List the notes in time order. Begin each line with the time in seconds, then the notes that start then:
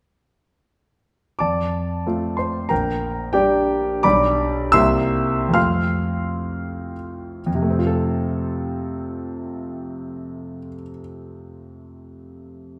1.39 F2 D5 A5 D6
2.06 A3 C4 F4
2.37 C5 C6
2.69 A#1 A#4 G5 A#5
3.33 G3 D4 G4 D5 G5
4.03 B1 G3 D4 G4 D5 B5 D6
4.72 C2 A#3 C4 G4 E5 C6 E6
5.49 F2 A3 C4
5.53 F4 F5 C6 F6
7.46 F2
7.55 C3
7.62 A3
7.70 C4
7.79 F4
7.87 A4